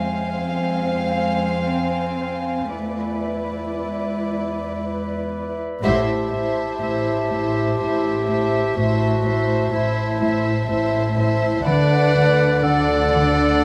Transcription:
Already playing: F2 G#3 C4 C5 F5 G#5
1.70 C4
2.71 E2 A3 E4 B4 D5 E5 B5
3.24 B4
3.75 G#3
4.82 B4
5.82 A1 A2 E4 G4 C5 E5 F#5 A5
6.32 A2 E4 C5 E5
6.81 A1 A2 E4 C5 E5
7.30 A2 E4 C5 E5
7.79 A1 A2 E4 C5 E5
8.27 A2 E4 C5 E5
8.75 A1 A2 E4 F#4 C5 E5 A5
9.24 A2 E4 C5 E5
9.72 A1 A2 E4 C5 E5
10.20 A2 E4 C5 E5
10.68 A1 A2 E4 C5 E5
11.17 A2 E4 C5 E5
11.65 D2 D3 D4 A4 B4 D5 F#5 B5
12.15 D3
12.63 D3 D4 A4 D5 F#5
13.13 D3

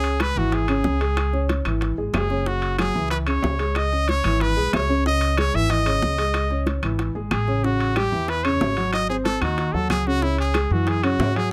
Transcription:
Already playing: C#2 C#3 C#4 G#4
0.04 high timbale
0.20 G#3 G#4 B4, high bongo, high timbale, claves
0.36 G#1 E3 E4 F#4
0.52 G#4, high bongo, high timbale
0.68 C#3 C#4, high timbale, claves
0.84 C#2, high bongo, low bongo
1.01 G#3 G#4, high timbale
1.17 high bongo, high timbale, claves
1.33 C#4 C#5, high bongo
1.49 high bongo, high timbale
1.65 G#1 E3 E4, high bongo, high timbale, claves
1.81 high bongo, high timbale
1.98 G#1 G#3 G#4
2.14 F#1 G#4, high bongo, low bongo, high timbale, low timbale, claves
2.30 C#3 C#4, high bongo
2.46 C#3 C#4 F#4, high bongo
2.62 high timbale
2.79 F#3 F#4 G#4, high bongo, high timbale, claves
2.95 C#2 E3 E4
3.10 B4, high bongo, high timbale
3.27 C#3 C#4 C#5, high timbale, claves
3.43 C#2, high bongo, low bongo, low timbale
3.59 G#3 G#4, high timbale
3.75 D#5, high bongo, high timbale, claves
3.92 C#4 C#5, high bongo
4.08 C#5, high bongo, high timbale
4.24 G#1 E3 E4, high bongo, high timbale, claves
4.40 B4, high bongo, high timbale
4.57 B1 G#3 G#4
4.73 C#2 C#5, high bongo, low bongo, high timbale, low timbale, claves
4.89 C#3 C#4, high bongo
5.05 C#3 C#4 D#5, high bongo
5.21 high timbale
5.37 G#3 G#4 C#5, high bongo, high timbale, claves
5.54 G#1 E3 E4 E5
5.70 D#5, high bongo, high timbale
5.86 C#3 C#4, high timbale, claves
6.02 C#2, high bongo, low bongo
6.18 G#3 G#4, high timbale
6.34 high bongo, high timbale, claves
6.50 C#4 C#5, high bongo
6.67 high bongo, high timbale
6.83 G#1 E3 E4, high bongo, high timbale, claves
6.99 high bongo, high timbale
7.15 G#1 G#3 G#4
7.31 A1 G#4, high bongo, low bongo, high timbale, claves
7.48 C#3 C#4, high bongo
7.64 C#3 C#4 F#4, high bongo
7.80 high timbale
7.96 G3 G4, high bongo, high timbale, claves
8.12 E2 E3 E4
8.28 B4, high bongo, high timbale
8.45 C#3 C#4 C#5, high timbale, claves
8.61 G#1, high bongo, low bongo, low timbale
8.77 F#3 F#4, high timbale
8.93 D#5, high bongo, high timbale, claves
9.09 C4 G#4 C5, high bongo
9.25 A4, high bongo, high timbale
9.41 D#2 D#3 D#4 F#4, high bongo, high timbale, claves
9.58 high bongo, high timbale
9.74 D#2 F#3 F#4 A4
9.90 C#2 G#4, high bongo, low bongo, high timbale, claves
10.06 C#3 C#4 F#4, high bongo
10.22 C#3 C#4 E4, high bongo
10.38 G#4, high timbale
10.54 G#3 G#4, high bongo, high timbale, claves
10.71 F#2 E3 E4 F#4
10.87 G#4, high bongo, high timbale
11.03 C#3 C#4 F#4, high timbale, claves
11.19 G#2, high bongo, low bongo, low timbale
11.36 F#3 F#4 G#4, high timbale

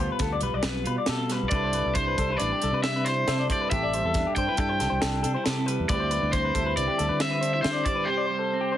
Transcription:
Already playing: B2 G3 B3 F4 A4
0.00 C5
0.12 B4
0.19 D2 B3 A4, kick, snare, closed hi-hat
0.33 D5
0.41 B1 G3 B4, closed hi-hat
0.53 B1 D5
0.61 B1 B3 B4, snare, closed hi-hat
0.84 B2 F4 B4, closed hi-hat
0.98 D5
1.06 B2 G4 A4, snare, closed hi-hat
1.18 A4
1.29 G3 B4, snare, closed hi-hat
1.43 B1
1.49 C2 C3 G3 D4 E4 A4 B4 D5, kick, closed hi-hat
1.64 C5
1.73 G3 B4, closed hi-hat
1.86 C2
1.95 D4 C5, kick, closed hi-hat
2.08 B4
2.18 C2 D4 A4, kick, closed hi-hat
2.29 E4 B4
2.38 A1 D4 D5, closed hi-hat
2.52 G4
2.61 C2 G3 A4, closed hi-hat
2.72 C3 B4
2.83 D4 E5, snare, closed hi-hat
2.96 B4
3.05 E4 C5, snare, closed hi-hat
3.28 C3 A4 E5, snare, closed hi-hat
3.40 D5
3.50 G3 C5 D5, kick, closed hi-hat
3.61 B4
3.70 A1 C3 G4 A4 E5, kick, closed hi-hat
3.83 D5
3.94 G3 C5, closed hi-hat
4.04 E2 A4
4.14 D4, kick, snare, closed hi-hat
4.27 G4
4.35 G2 D4 C5 G5, kick, closed hi-hat
4.48 E4 B4
4.57 G2 D4 A4 G5, kick, closed hi-hat
4.69 C5
4.79 C2 G3 A4, snare, closed hi-hat
4.90 C2 C5
5.01 C2 D4 A4, snare, closed hi-hat
5.23 C3 D4 A4, closed hi-hat
5.34 E4 C5
5.44 C3 G4 A4, snare, closed hi-hat
5.57 A4
5.66 G3 B4, closed hi-hat
5.80 E2
5.89 D2 D3 G3 C4 B4 D5, kick, closed hi-hat
5.93 E4 G4
6.00 C5
6.11 G3 B4, closed hi-hat
6.23 D2
6.32 C4 C5, kick, closed hi-hat
6.45 B4
6.54 D2 E4 A4, kick, closed hi-hat
6.66 B4
6.77 C2 C4 D5, closed hi-hat
6.87 G4
6.98 D2 G3 A4, closed hi-hat
7.09 D3 B4
7.20 C4 E5, snare, closed hi-hat
7.31 B4
7.41 D4 C5, closed hi-hat
7.54 E4 E5
7.62 D3 C5 E5, snare, closed hi-hat
7.67 D3 G4
7.73 D5
7.85 G3 C5 D5, kick, closed hi-hat
7.95 B4
8.05 C3 G4 C5
8.17 D5
8.27 G3 C5
8.39 A4
8.53 C4
8.61 G4
8.72 D4 C5

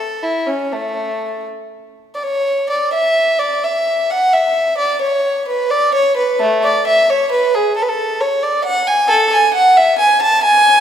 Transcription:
Already playing: A4
0.23 E4
0.47 C#4
0.72 A3
2.15 D5
2.23 C#5
2.70 D5
2.93 E5
3.39 D5
3.63 E5
4.10 F#5
4.33 E5
4.78 D5
5.02 C#5
5.49 B4
5.71 D5
5.95 C#5
6.17 B4
6.40 A3
6.64 D5
6.88 E5
7.10 C#5
7.32 B4
7.55 G#4
7.76 A4
7.82 B4
7.89 A4
8.20 C#5
8.43 D5
8.65 F#5
8.87 G#5
9.08 A4
9.32 G#5
9.54 F#5
9.77 E5
9.99 G#5
10.22 A5
10.44 G#5

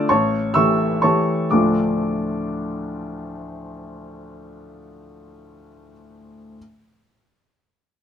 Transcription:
0.09 A1 C#5 A5 C#6
0.54 E3 A3 G4 E5 C#6 E6
1.02 E3 A3 G4 C#5 A5 C#6
1.51 D2 A2 F3 A3 D4 F4 D6

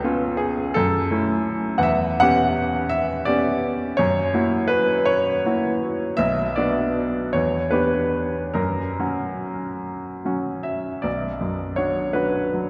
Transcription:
Already playing: C#2 A4
0.04 B3 C#4 F4
0.37 G#4
0.74 F#2 A4
1.10 A3 C#4 E4
1.78 E2 F#5
1.83 E5
2.20 B3 C#4 G4 F#5
2.89 E5
3.25 B3 C#4 G4 D5
3.97 F#2 C#5
4.34 A#3 E4 F#4
4.68 B4
5.05 C#5
5.45 A#3 E4 F#4
6.17 B1 E5
6.56 B3 D4 F#4 D5
7.33 E2 C#5
7.71 B3 D4 G4 B4
8.54 F#2 A#4
8.99 F#3 C#4 F#4
10.25 F#3 C#4 F#4
10.63 E5
11.02 B1 D5
11.41 F#2
11.76 D4 F#4 C#5
12.13 D4 F#4 B4
12.54 F#3

